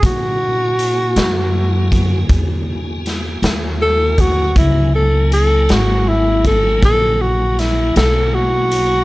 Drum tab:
HH |x-xx-xx-xx-x|x-xx-xx-xx-x|
SD |---o----oo--|---o----oo--|
BD |o----oo----o|o----oo-----|